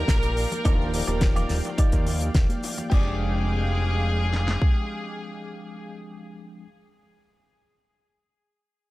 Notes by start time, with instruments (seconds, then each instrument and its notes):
Already playing: tine electric piano F3 A#3 D#4 G4 D5, violin section A#4, analog synth pad D5 F5 G5
0.08 analog synth bass A#1, kick, snare, closed hi-hat, cabasa
0.23 closed hi-hat, high bongo, cabasa
0.37 open hi-hat, cabasa
0.52 muted clean electric guitar stroke, closed hi-hat, high conga, low conga, cabasa
0.65 analog synth bass D#1, tine electric piano F3 A#3 D4 D#4 F4, clean electric guitar D#4 F4 G4 D5, kick, closed hi-hat, high bongo, cabasa
0.81 cabasa
0.93 tine electric piano F3 A#3 D#4 G4 D5, open hi-hat, cabasa
1.07 analog synth bass D#1, clean electric guitar D#4 F4 G4 D5, closed hi-hat, high conga, cabasa
1.21 kick, snare, closed hi-hat, high bongo, low conga, cabasa
1.36 clean electric guitar D#4 F4 G4 D5, closed hi-hat, low conga, cabasa
1.49 analog synth bass D#1, snare, open hi-hat, cabasa
1.65 closed hi-hat, high bongo, cabasa
1.78 clean electric guitar D#4 F4 G4 D5, kick, closed hi-hat, cabasa
1.92 analog synth bass D#2, kick, closed hi-hat, cabasa
2.07 open hi-hat, high conga, cabasa
2.21 closed hi-hat, high bongo, cabasa
2.34 analog synth bass D#1, kick, snare, closed hi-hat, cabasa
2.50 closed hi-hat, high conga, cabasa
2.63 open hi-hat, high bongo, cabasa
2.77 muted clean electric guitar stroke, closed hi-hat, high conga, low conga, cabasa
2.90 analog synth bass F1, tine electric piano F3 G#3 C4 D4 G5, analog synth pad G#3 F5 G5 D6, clean electric guitar G4 G#4, violin section G#4, kick, crash
2.94 clean electric guitar D5
4.33 snare
4.48 snare
4.62 kick